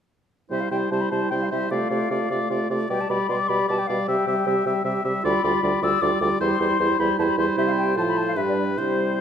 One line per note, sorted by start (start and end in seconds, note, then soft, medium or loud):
0.51 0.60 C3 soft
0.51 0.70 G3 soft
0.51 0.71 E4 soft
0.51 0.71 C5 soft
0.51 0.62 E5 soft
0.60 0.70 F5 soft
0.71 0.81 C3 soft
0.71 0.91 G3 soft
0.71 0.91 E4 soft
0.71 0.91 C5 soft
0.71 0.77 G5 medium
0.91 1.01 C3 soft
0.91 1.11 G3 soft
0.91 1.11 E4 soft
0.91 1.11 C5 soft
0.91 1.03 A5 medium
1.01 1.10 B5 soft
1.11 1.21 C3 soft
1.11 1.31 G3 soft
1.11 1.31 E4 soft
1.11 1.30 C5 soft
1.11 1.29 A5 soft
1.30 1.40 C3 soft
1.30 1.51 G3 soft
1.30 1.51 E4 soft
1.30 1.51 C5 soft
1.30 1.35 G5 medium
1.42 1.46 F5 soft
1.51 1.61 C3 soft
1.51 1.70 G3 soft
1.51 1.71 E4 soft
1.51 1.70 C5 soft
1.51 1.70 E5 soft
1.70 1.80 C3 soft
1.70 1.90 A3 soft
1.70 1.91 F4 soft
1.70 1.90 D5 soft
1.70 2.68 F5 medium
1.90 2.00 C3 soft
1.90 2.10 A3 soft
1.90 2.11 F4 soft
1.90 2.10 D5 soft
2.11 2.20 C3 soft
2.11 2.30 A3 soft
2.11 2.31 F4 soft
2.11 2.30 D5 soft
2.30 2.39 C3 soft
2.30 2.50 A3 soft
2.30 2.49 F4 soft
2.30 2.50 D5 soft
2.50 2.60 C3 soft
2.50 2.70 A3 soft
2.50 2.69 F4 soft
2.50 2.70 D5 soft
2.70 2.79 C3 soft
2.70 2.89 A3 soft
2.70 2.89 F4 soft
2.70 2.89 D5 soft
2.89 2.99 B2 soft
2.89 3.09 G3 soft
2.89 3.09 G4 soft
2.89 3.09 D5 soft
2.89 3.02 G5 medium
3.01 3.11 A5 soft
3.09 3.19 B2 soft
3.09 3.29 G3 soft
3.09 3.28 G4 soft
3.09 3.28 D5 soft
3.09 3.32 B5 medium
3.29 3.38 B2 soft
3.29 3.49 G3 soft
3.29 3.48 G4 soft
3.29 3.49 D5 soft
3.29 3.38 C6 medium
3.39 3.50 D6 medium
3.49 3.58 B2 soft
3.49 3.69 G3 soft
3.49 3.68 G4 soft
3.49 3.68 D5 soft
3.49 3.68 B5 medium
3.68 3.78 B2 soft
3.68 3.88 G3 soft
3.68 3.88 G4 soft
3.68 3.88 D5 soft
3.68 3.80 A5 medium
3.79 3.89 G5 soft
3.87 3.98 B2 soft
3.87 4.08 G3 soft
3.87 4.08 G4 soft
3.87 4.08 D5 soft
3.87 4.06 F5 soft
4.07 4.17 C3 soft
4.07 4.27 G3 soft
4.07 4.27 G4 soft
4.07 4.27 E5 soft
4.07 5.02 G5 medium
4.27 4.36 C3 soft
4.27 4.46 G3 soft
4.27 4.46 G4 soft
4.27 4.46 E5 soft
4.46 4.55 C3 soft
4.46 4.66 G3 soft
4.46 4.66 G4 soft
4.46 4.66 E5 soft
4.66 4.74 C3 soft
4.66 4.84 G3 soft
4.66 4.85 G4 soft
4.66 4.84 E5 soft
4.85 4.94 C3 medium
4.85 5.03 G3 soft
4.85 5.03 G4 soft
4.85 5.04 E5 soft
5.04 5.14 C3 soft
5.04 5.23 G3 soft
5.04 5.23 G4 soft
5.04 5.24 E5 soft
5.23 5.33 D2 medium
5.23 5.43 G3 soft
5.23 5.43 F4 soft
5.23 5.43 D5 soft
5.23 5.85 B5 medium
5.44 5.53 D2 soft
5.44 5.62 G3 soft
5.44 5.62 F4 soft
5.44 5.62 D5 soft
5.63 5.72 D2 medium
5.63 5.82 G3 soft
5.63 5.82 F4 soft
5.63 5.82 D5 soft
5.82 5.91 D2 soft
5.82 6.01 G3 soft
5.82 6.00 F4 soft
5.82 6.01 D5 soft
5.82 6.03 E6 medium
6.01 6.11 D2 medium
6.01 6.20 G3 soft
6.01 6.20 F4 soft
6.01 6.21 D5 soft
6.01 6.39 D6 medium
6.21 6.30 D2 medium
6.21 6.40 G3 soft
6.21 6.40 F4 soft
6.21 6.40 D5 soft
6.40 6.49 E2 medium
6.40 6.59 G3 soft
6.40 6.59 E4 soft
6.40 6.59 C5 soft
6.40 7.02 C6 medium
6.59 6.69 E2 soft
6.59 6.79 G3 soft
6.59 6.79 E4 soft
6.59 6.79 C5 soft
6.79 6.88 E2 soft
6.79 6.99 G3 soft
6.79 6.98 E4 soft
6.79 6.99 C5 soft
6.99 7.08 E2 soft
6.99 7.18 G3 soft
6.99 7.17 E4 soft
6.99 7.19 C5 soft
6.99 7.18 B5 medium
7.17 7.28 E2 soft
7.17 7.38 G3 soft
7.17 7.37 E4 soft
7.17 7.38 C5 soft
7.17 7.23 A5 medium
7.28 7.38 B5 medium
7.37 7.47 E2 soft
7.37 7.58 G3 soft
7.37 7.55 E4 soft
7.37 7.57 C5 soft
7.37 7.45 C6 medium
7.56 7.98 C3 soft
7.56 7.99 G3 soft
7.56 7.93 E4 soft
7.56 7.94 C5 soft
7.56 7.62 E5 medium
7.67 7.71 F5 medium
7.78 7.97 G5 medium
7.96 8.38 A2 soft
7.96 8.37 F3 soft
7.96 8.37 F4 soft
7.96 8.39 C5 soft
7.96 8.02 A5 medium
8.08 8.19 B5 medium
8.17 8.27 A5 medium
8.28 8.32 F5 medium
8.36 8.80 G2 soft
8.36 8.67 G3 soft
8.36 8.79 D4 soft
8.36 8.80 B4 soft
8.36 8.41 E5 medium
8.49 8.53 D5 soft
8.58 8.64 D5 soft
8.78 9.21 C3 soft
8.78 9.21 G3 soft
8.78 9.21 E4 soft
8.78 9.21 C5 soft